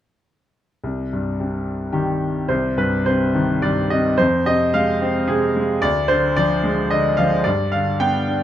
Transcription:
0, 0, Header, 1, 2, 480
1, 0, Start_track
1, 0, Key_signature, -3, "minor"
1, 0, Tempo, 575264
1, 697, Time_signature, 3, 2, 24, 8
1, 1170, Tempo, 558659
1, 3570, Tempo, 545951
1, 7294, End_track
2, 0, Start_track
2, 0, Title_t, "Grand piano"
2, 0, Program_c, 0, 0
2, 697, Note_on_c, 0, 36, 31
2, 858, Control_c, 0, 64, 127
2, 943, Note_on_c, 0, 43, 29
2, 1167, Note_on_c, 0, 48, 31
2, 1620, Note_on_c, 0, 67, 45
2, 1621, Note_on_c, 0, 51, 38
2, 1841, Note_off_c, 0, 43, 0
2, 2067, Note_off_c, 0, 67, 0
2, 2074, Note_off_c, 0, 36, 0
2, 2079, Note_off_c, 0, 48, 0
2, 2087, Note_off_c, 0, 51, 0
2, 2100, Note_on_c, 0, 72, 55
2, 2108, Note_on_c, 0, 36, 43
2, 2120, Control_c, 0, 64, 0
2, 2260, Control_c, 0, 64, 127
2, 2348, Note_on_c, 0, 43, 35
2, 2352, Note_on_c, 0, 71, 52
2, 2358, Note_off_c, 0, 72, 0
2, 2580, Note_off_c, 0, 71, 0
2, 2588, Note_on_c, 0, 48, 37
2, 2593, Note_on_c, 0, 72, 57
2, 2840, Note_on_c, 0, 51, 42
2, 3049, Note_off_c, 0, 72, 0
2, 3061, Note_off_c, 0, 43, 0
2, 3074, Note_on_c, 0, 43, 37
2, 3078, Note_on_c, 0, 74, 62
2, 3306, Note_off_c, 0, 48, 0
2, 3307, Note_off_c, 0, 74, 0
2, 3319, Note_on_c, 0, 48, 37
2, 3319, Note_on_c, 0, 75, 57
2, 3534, Note_off_c, 0, 36, 0
2, 3545, Note_off_c, 0, 51, 0
2, 3547, Note_off_c, 0, 43, 0
2, 3553, Note_on_c, 0, 72, 71
2, 3556, Note_off_c, 0, 48, 0
2, 3562, Note_on_c, 0, 41, 47
2, 3571, Note_off_c, 0, 75, 0
2, 3580, Control_c, 0, 64, 0
2, 3743, Control_c, 0, 64, 127
2, 3804, Note_on_c, 0, 48, 41
2, 3804, Note_on_c, 0, 75, 62
2, 3811, Note_off_c, 0, 72, 0
2, 4047, Note_on_c, 0, 77, 74
2, 4049, Note_on_c, 0, 56, 37
2, 4055, Note_off_c, 0, 75, 0
2, 4293, Note_on_c, 0, 60, 49
2, 4488, Note_off_c, 0, 77, 0
2, 4517, Note_off_c, 0, 48, 0
2, 4520, Note_on_c, 0, 68, 63
2, 4530, Note_on_c, 0, 48, 44
2, 4753, Note_off_c, 0, 56, 0
2, 4767, Note_on_c, 0, 56, 41
2, 4956, Note_off_c, 0, 41, 0
2, 4975, Note_off_c, 0, 60, 0
2, 4983, Note_off_c, 0, 48, 0
2, 4992, Note_off_c, 0, 56, 0
2, 4995, Note_on_c, 0, 74, 83
2, 4997, Note_on_c, 0, 38, 54
2, 5004, Control_c, 0, 64, 0
2, 5007, Note_off_c, 0, 68, 0
2, 5161, Control_c, 0, 64, 127
2, 5228, Note_on_c, 0, 72, 75
2, 5237, Note_on_c, 0, 50, 41
2, 5241, Note_off_c, 0, 74, 0
2, 5454, Note_off_c, 0, 72, 0
2, 5477, Note_on_c, 0, 74, 81
2, 5485, Note_on_c, 0, 53, 42
2, 5714, Note_on_c, 0, 56, 45
2, 5945, Note_off_c, 0, 50, 0
2, 5952, Note_on_c, 0, 75, 62
2, 5958, Note_on_c, 0, 50, 45
2, 5971, Note_off_c, 0, 74, 0
2, 6182, Note_off_c, 0, 53, 0
2, 6185, Note_on_c, 0, 77, 62
2, 6196, Note_on_c, 0, 53, 42
2, 6200, Note_off_c, 0, 75, 0
2, 6400, Note_off_c, 0, 38, 0
2, 6412, Note_off_c, 0, 56, 0
2, 6422, Note_off_c, 0, 50, 0
2, 6422, Note_on_c, 0, 74, 71
2, 6428, Note_off_c, 0, 53, 0
2, 6437, Note_off_c, 0, 77, 0
2, 6437, Note_on_c, 0, 43, 49
2, 6445, Control_c, 0, 64, 0
2, 6576, Control_c, 0, 64, 127
2, 6666, Note_on_c, 0, 77, 63
2, 6676, Note_off_c, 0, 74, 0
2, 6677, Note_on_c, 0, 50, 37
2, 6915, Note_on_c, 0, 79, 70
2, 6919, Note_off_c, 0, 77, 0
2, 6919, Note_on_c, 0, 59, 36
2, 7160, Note_on_c, 0, 62, 38
2, 7294, Note_off_c, 0, 43, 0
2, 7294, Note_off_c, 0, 50, 0
2, 7294, Note_off_c, 0, 59, 0
2, 7294, Note_off_c, 0, 62, 0
2, 7294, Note_off_c, 0, 79, 0
2, 7294, End_track
0, 0, End_of_file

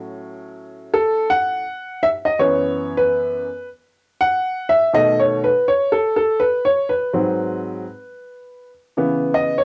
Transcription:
0, 0, Header, 1, 2, 480
1, 0, Start_track
1, 0, Tempo, 731707
1, 1327, Time_signature, 4, 2, 24, 8
1, 6324, End_track
2, 0, Start_track
2, 0, Title_t, "Upright piano"
2, 0, Program_c, 0, 0
2, 0, Note_on_c, 0, 45, 54
2, 0, Note_on_c, 0, 54, 50
2, 0, Note_on_c, 0, 61, 61
2, 613, Note_on_c, 0, 69, 92
2, 834, Note_off_c, 0, 69, 0
2, 852, Note_on_c, 0, 78, 103
2, 1063, Note_off_c, 0, 45, 0
2, 1065, Note_off_c, 0, 54, 0
2, 1066, Note_off_c, 0, 61, 0
2, 1330, Note_on_c, 0, 76, 102
2, 1344, Note_off_c, 0, 78, 0
2, 1363, Note_off_c, 0, 76, 0
2, 1477, Note_on_c, 0, 75, 89
2, 1561, Note_off_c, 0, 75, 0
2, 1567, Note_on_c, 0, 42, 56
2, 1569, Note_on_c, 0, 52, 49
2, 1571, Note_on_c, 0, 73, 89
2, 1573, Note_on_c, 0, 59, 62
2, 1951, Note_on_c, 0, 71, 90
2, 1970, Note_off_c, 0, 73, 0
2, 2261, Note_off_c, 0, 42, 0
2, 2262, Note_off_c, 0, 52, 0
2, 2264, Note_off_c, 0, 59, 0
2, 2408, Note_off_c, 0, 71, 0
2, 2760, Note_on_c, 0, 78, 100
2, 3078, Note_on_c, 0, 76, 97
2, 3093, Note_off_c, 0, 78, 0
2, 3237, Note_on_c, 0, 47, 57
2, 3241, Note_on_c, 0, 51, 53
2, 3245, Note_on_c, 0, 75, 100
2, 3247, Note_on_c, 0, 57, 64
2, 3248, Note_off_c, 0, 76, 0
2, 3409, Note_on_c, 0, 73, 83
2, 3411, Note_off_c, 0, 75, 0
2, 3557, Note_off_c, 0, 73, 0
2, 3568, Note_on_c, 0, 71, 79
2, 3583, Note_off_c, 0, 47, 0
2, 3586, Note_off_c, 0, 51, 0
2, 3589, Note_off_c, 0, 57, 0
2, 3716, Note_off_c, 0, 71, 0
2, 3727, Note_on_c, 0, 73, 91
2, 3884, Note_on_c, 0, 69, 83
2, 3892, Note_off_c, 0, 73, 0
2, 4034, Note_off_c, 0, 69, 0
2, 4044, Note_on_c, 0, 69, 77
2, 4196, Note_on_c, 0, 71, 90
2, 4210, Note_off_c, 0, 69, 0
2, 4350, Note_off_c, 0, 71, 0
2, 4362, Note_on_c, 0, 73, 86
2, 4521, Note_on_c, 0, 71, 83
2, 4530, Note_off_c, 0, 73, 0
2, 4678, Note_on_c, 0, 44, 54
2, 4680, Note_on_c, 0, 54, 49
2, 4684, Note_on_c, 0, 60, 60
2, 5138, Note_off_c, 0, 44, 0
2, 5140, Note_off_c, 0, 54, 0
2, 5142, Note_off_c, 0, 60, 0
2, 5698, Note_off_c, 0, 71, 0
2, 5884, Note_on_c, 0, 49, 53
2, 5887, Note_on_c, 0, 52, 47
2, 5890, Note_on_c, 0, 59, 59
2, 6128, Note_on_c, 0, 75, 90
2, 6284, Note_on_c, 0, 73, 80
2, 6293, Note_off_c, 0, 75, 0
2, 6324, Note_off_c, 0, 49, 0
2, 6324, Note_off_c, 0, 52, 0
2, 6324, Note_off_c, 0, 59, 0
2, 6324, Note_off_c, 0, 73, 0
2, 6324, End_track
0, 0, End_of_file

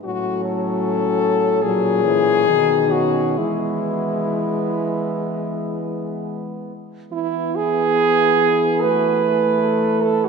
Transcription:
0, 0, Header, 1, 5, 480
1, 0, Start_track
1, 0, Key_signature, 4, "major"
1, 0, Tempo, 792602
1, 41, Time_signature, 4, 2, 24, 8
1, 1001, Tempo, 835655
1, 1481, Tempo, 925926
1, 3881, Tempo, 849858
1, 4841, Tempo, 804290
1, 5718, End_track
2, 0, Start_track
2, 0, Title_t, "French horn"
2, 0, Program_c, 0, 60
2, 25, Note_on_c, 0, 66, 101
2, 251, Note_off_c, 0, 66, 0
2, 271, Note_on_c, 0, 69, 109
2, 982, Note_on_c, 0, 68, 127
2, 991, Note_off_c, 0, 69, 0
2, 1701, Note_on_c, 0, 66, 102
2, 1709, Note_off_c, 0, 68, 0
2, 1943, Note_on_c, 0, 64, 94
2, 1950, Note_off_c, 0, 66, 0
2, 3388, Note_off_c, 0, 64, 0
2, 4841, Note_on_c, 0, 66, 82
2, 5084, Note_on_c, 0, 68, 81
2, 5093, Note_off_c, 0, 66, 0
2, 5321, Note_on_c, 0, 69, 85
2, 5329, Note_off_c, 0, 68, 0
2, 5718, Note_off_c, 0, 69, 0
2, 5718, End_track
3, 0, Start_track
3, 0, Title_t, "French horn"
3, 0, Program_c, 1, 60
3, 32, Note_on_c, 1, 61, 85
3, 973, Note_off_c, 1, 61, 0
3, 996, Note_on_c, 1, 61, 84
3, 1476, Note_on_c, 1, 63, 85
3, 1484, Note_off_c, 1, 61, 0
3, 1700, Note_on_c, 1, 61, 82
3, 1708, Note_off_c, 1, 63, 0
3, 1948, Note_off_c, 1, 61, 0
3, 1953, Note_on_c, 1, 59, 77
3, 3680, Note_off_c, 1, 59, 0
3, 3883, Note_on_c, 1, 64, 108
3, 4130, Note_on_c, 1, 68, 127
3, 4138, Note_off_c, 1, 64, 0
3, 4842, Note_on_c, 1, 71, 109
3, 4851, Note_off_c, 1, 68, 0
3, 5564, Note_on_c, 1, 69, 101
3, 5573, Note_off_c, 1, 71, 0
3, 5696, Note_on_c, 1, 66, 98
3, 5705, Note_off_c, 1, 69, 0
3, 5718, Note_off_c, 1, 66, 0
3, 5718, End_track
4, 0, Start_track
4, 0, Title_t, "French horn"
4, 0, Program_c, 2, 60
4, 29, Note_on_c, 2, 54, 82
4, 971, Note_off_c, 2, 54, 0
4, 991, Note_on_c, 2, 54, 87
4, 1220, Note_off_c, 2, 54, 0
4, 1223, Note_on_c, 2, 52, 85
4, 1480, Note_on_c, 2, 51, 73
4, 1488, Note_off_c, 2, 52, 0
4, 1946, Note_on_c, 2, 56, 76
4, 1954, Note_off_c, 2, 51, 0
4, 3697, Note_off_c, 2, 56, 0
4, 3883, Note_on_c, 2, 59, 80
4, 4855, Note_on_c, 2, 57, 89
4, 4864, Note_off_c, 2, 59, 0
4, 5718, Note_off_c, 2, 57, 0
4, 5718, End_track
5, 0, Start_track
5, 0, Title_t, "French horn"
5, 0, Program_c, 3, 60
5, 33, Note_on_c, 3, 45, 77
5, 993, Note_on_c, 3, 46, 85
5, 1002, Note_off_c, 3, 45, 0
5, 1473, Note_off_c, 3, 46, 0
5, 1477, Note_on_c, 3, 47, 74
5, 1948, Note_on_c, 3, 52, 70
5, 1956, Note_off_c, 3, 47, 0
5, 3698, Note_off_c, 3, 52, 0
5, 3885, Note_on_c, 3, 52, 79
5, 5718, Note_off_c, 3, 52, 0
5, 5718, End_track
0, 0, End_of_file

